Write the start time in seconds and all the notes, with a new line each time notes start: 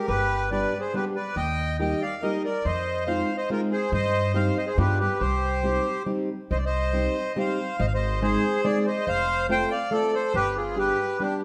0.08 G1 G4 B4
0.51 G3 B3 D4 G4 B4 D5
0.80 G#4 C5
0.94 G3 B3 D4 G4 B4
1.15 B4 D5
1.36 D#2 D#5 G5
1.79 G3 A#3 D#4 G4 D#5 G5
2.02 D5 F5
2.22 G3 A#3 D#4 G4 A#4 D#5
2.44 A#4 D5
2.64 F2 C5 D#5
3.06 G#3 C4 D#4 F4 C5 F5
3.37 C5 D#5
3.50 G#3 C4 D#4 F4 A#4
3.72 G#4 C5
3.92 G2 C5 D#5
4.34 G3 C4 D#4 G4 C5 F5
4.57 C5 D#5
4.66 G#4 C5
4.77 G2 G3 B3 D4 F4 G4 B4
5.00 G4 B4
5.20 C2 G4 C5
5.63 G3 C4 D#4 G4
6.06 G3 C4 D#4 G4
6.51 C2 C5 D#5
6.58 D5
6.66 C5 D#5
6.93 G3 C4 D#4 G4
7.36 G3 C4 D#4 G4 C5 F5
7.79 G#1 C5 D#5
7.86 F5
7.94 C5 D#5
8.22 G#3 C4 D#4 G#4 C5
8.64 G#3 C4 D#4 G#4 D5
8.86 C5 D#5
9.07 F1 C5 F5
9.49 A3 C4 F4 A4 C5 G5
9.71 D5 F5
9.91 A3 C4 F4 A4 D5
10.14 A4 C5
10.34 G1 G4 B4
10.56 F4 G#4
10.76 G3 B3 D4 G4 B4
11.19 G3 B3 D4 G4